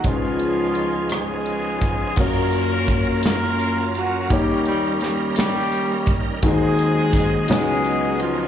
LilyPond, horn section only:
\new Staff \with { instrumentName = "Horn section" } { \time 6/8 \key fis \major \tempo 4. = 56 << { <eis eis'>4. <gis gis'>4. | <ais ais'>4. <ais ais'>4 <fis fis'>8 | <g g'>8 <g g'>8 <g g'>8 <g g'>4 r8 | <gis gis'>4. <gis gis'>4 <eis eis'>8 | } \\ { <gis b>4. <b eis'>4. | <cis' eis'>4. <cis' eis'>4. | <ais cis'>4. <ais cis'>4. | bis4. <b dis'>4. | } >> }